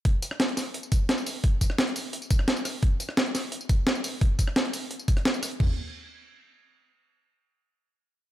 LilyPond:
\new DrumStaff \with { instrumentName = "Drums" } \drummode { \time 4/4 \tempo 4 = 173 <hh bd>8 <hh tamb>16 ss16 <hh sn>16 hh16 <hho sn tamb>8 hh16 tamb16 <hh bd tamb>8 <hh sn>16 tamb16 <hho tamb>8 | <hh bd>8 <hh bd tamb>16 ss16 <hh sn>16 hh16 <hho tamb>8 hh16 tamb16 <hh bd tamb>16 ss16 <hh sn>16 tamb16 <hho ss tamb>8 | <hh bd>8 <hh tamb>16 ss16 <hh sn>16 hh16 <hho sn tamb>8 hh16 tamb16 <hh bd tamb>8 <hh sn>16 tamb16 <hho tamb>8 | <hh bd>8 <hh bd tamb>16 ss16 <hh sn>16 hh16 <hho tamb>8 hh16 tamb16 <hh bd tamb>16 <hh ss>16 <hh sn>16 tamb16 <hho ss tamb>16 hh16 |
<cymc bd tomfh>4 r4 r4 r4 | r4 r4 r4 r4 | }